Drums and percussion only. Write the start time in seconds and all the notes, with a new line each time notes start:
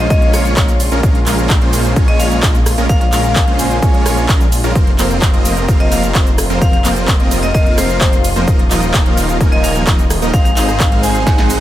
0.10 kick, closed hi-hat, shaker
0.22 closed hi-hat
0.34 cross-stick, open hi-hat, ride, shaker
0.45 closed hi-hat, shaker
0.57 kick, clap, closed hi-hat, shaker
0.68 closed hi-hat, shaker
0.80 open hi-hat, ride, shaker
0.92 closed hi-hat, shaker
1.03 kick, closed hi-hat, shaker
1.15 closed hi-hat
1.26 clap, open hi-hat, ride, shaker
1.38 closed hi-hat, shaker
1.50 kick, clap, closed hi-hat, shaker
1.61 closed hi-hat
1.73 open hi-hat, ride, shaker
1.85 shaker
1.96 kick, closed hi-hat, shaker
2.08 closed hi-hat
2.20 open hi-hat, ride, shaker
2.31 shaker
2.43 kick, clap, closed hi-hat, shaker
2.55 closed hi-hat, shaker
2.66 cross-stick, open hi-hat, ride, shaker
2.78 closed hi-hat, shaker
2.89 kick, closed hi-hat, shaker
3.01 closed hi-hat
3.12 clap, open hi-hat, ride, shaker
3.24 shaker
3.36 kick, clap, closed hi-hat, shaker
3.47 closed hi-hat
3.59 open hi-hat, ride, shaker
3.71 closed hi-hat, shaker
3.82 kick, closed hi-hat, shaker
3.94 closed hi-hat
4.06 cross-stick, open hi-hat, ride, shaker
4.17 closed hi-hat, shaker
4.29 kick, clap, closed hi-hat, shaker
4.41 closed hi-hat, shaker
4.52 open hi-hat, ride, shaker
4.64 closed hi-hat, shaker
4.75 kick, closed hi-hat, shaker
4.87 closed hi-hat
4.99 clap, open hi-hat, ride, shaker
5.10 closed hi-hat, shaker
5.22 kick, clap, closed hi-hat, shaker
5.34 closed hi-hat
5.45 open hi-hat, ride, shaker
5.57 closed hi-hat, shaker
5.68 kick, closed hi-hat, shaker
5.80 closed hi-hat
5.92 open hi-hat, ride, shaker
6.03 closed hi-hat, shaker
6.15 kick, clap, closed hi-hat, shaker
6.27 closed hi-hat, shaker
6.38 cross-stick, open hi-hat, ride, shaker
6.50 closed hi-hat, shaker
6.62 kick, closed hi-hat, shaker
6.73 closed hi-hat
6.85 clap, open hi-hat, ride, shaker
6.96 closed hi-hat, shaker
7.08 kick, clap, closed hi-hat, shaker
7.20 closed hi-hat
7.31 open hi-hat, ride, shaker
7.43 closed hi-hat, shaker
7.55 kick, closed hi-hat, shaker
7.66 closed hi-hat
7.78 cross-stick, open hi-hat, ride, shaker
7.90 closed hi-hat, shaker
8.01 kick, clap, closed hi-hat, shaker
8.13 closed hi-hat, shaker
8.24 open hi-hat, ride, shaker
8.36 closed hi-hat, shaker
8.48 kick, closed hi-hat, shaker
8.59 closed hi-hat
8.71 clap, open hi-hat, ride, shaker
8.83 closed hi-hat, shaker
8.94 kick, clap, closed hi-hat, shaker
9.06 closed hi-hat
9.17 open hi-hat, ride, shaker
9.29 closed hi-hat, shaker
9.41 kick, closed hi-hat, shaker
9.52 closed hi-hat
9.64 open hi-hat, ride, shaker
9.76 closed hi-hat, shaker
9.87 kick, clap, closed hi-hat, shaker
9.99 closed hi-hat, shaker
10.10 cross-stick, open hi-hat, ride, shaker
10.22 closed hi-hat, shaker
10.34 kick, closed hi-hat, shaker
10.45 closed hi-hat, shaker
10.57 clap, open hi-hat, ride, shaker
10.69 cross-stick, closed hi-hat, shaker
10.80 kick, clap, closed hi-hat, shaker
10.92 closed hi-hat
11.03 open hi-hat, ride, shaker
11.15 closed hi-hat, shaker
11.27 kick, snare, closed hi-hat, shaker
11.38 snare, closed hi-hat
11.50 open hi-hat, ride, shaker